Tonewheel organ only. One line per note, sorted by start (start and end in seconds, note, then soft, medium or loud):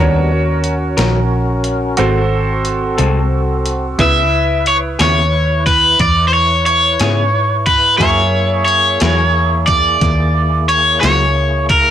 0.00 0.32 G3 medium
0.00 0.32 B3 medium
0.00 0.32 D4 medium
0.32 1.97 C#4 medium
0.32 1.97 F#4 medium
0.32 1.98 A#4 medium
2.00 3.99 C4 medium
2.00 3.99 F#4 medium
2.00 3.98 A4 medium
4.01 7.98 E4 medium
4.01 7.98 B4 medium
8.00 11.91 A#3 medium
8.00 11.91 E4 medium
8.00 11.91 G#4 medium